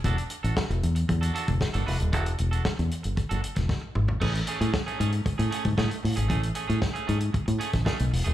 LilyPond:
<<
  \new Staff \with { instrumentName = "Clean electric guitar" } { \time 4/4 \key a \major \tempo 4 = 115 <d' fis' a'>16 r8 <d' fis' a'>16 r4 r16 <d' fis' a'>16 <d' fis' a'>16 r8 <d' fis' a'>16 <d' fis' b'>16 r16 | <d' fis' a'>16 r8 <d' fis' a'>16 r4 r16 <d' fis' a'>16 r4. | <a cis' gis'>16 r16 <a cis' gis'>16 <a cis' gis'>16 r16 <a cis' gis'>16 <a cis' gis'>16 r8 <a cis' gis'>16 <a cis' gis'>16 r16 <a cis' gis'>16 r8 <a cis' gis'>16 | <a cis' gis'>16 r16 <a cis' gis'>16 <a cis' gis'>16 r16 <a cis' gis'>16 <a cis' gis'>16 r8. <a cis' gis'>16 r16 <a cis' gis'>16 r8 <a cis' gis'>16 | }
  \new Staff \with { instrumentName = "Fingered electric bass" } { \clef bass \time 4/4 \key a \major e,,16 r8 a,,16 r16 e,,16 e,8 e,8 r16 e,,16 r16 fis,,16 e,,16 dis,,16 | e,,8 e,,8 r16 e,16 r16 fis,,16 r16 fis,,16 r16 e,,16 r8 gis,,8 | a,,8 r16 a,16 r8 gis,8 r16 a,16 r16 gis,16 a,16 r16 a,16 gis,,16 | a,,8 r16 a,16 r8 gis,8 r16 a,16 r16 a,,16 r16 b,,16 e,,16 dis,,16 | }
  \new DrumStaff \with { instrumentName = "Drums" } \drummode { \time 4/4 <hh bd>16 hh16 hh16 hh16 <bd sn>16 hh16 hh16 hh16 <hh bd>16 hh16 hh16 <hh bd>16 <bd sn>16 hh16 hho16 hh16 | <hh bd>16 hh16 hh16 hh16 <bd sn>16 hh16 hh16 hh16 <hh bd>16 hh16 hh16 <hh bd sn>16 <bd sn>8 toml16 tomfh16 | <cymc bd>16 hh16 hh16 hh16 <bd sn>16 hh16 hh16 hh16 <hh bd>16 hh16 hh16 <hh bd>16 <bd sn>16 hh16 hho16 hh16 | <hh bd>16 hh16 hh16 hh16 <bd sn>16 hh16 hh16 hh16 <hh bd>16 hh16 hh16 <hh bd sn>16 <bd sn>16 hh16 hho16 hh16 | }
>>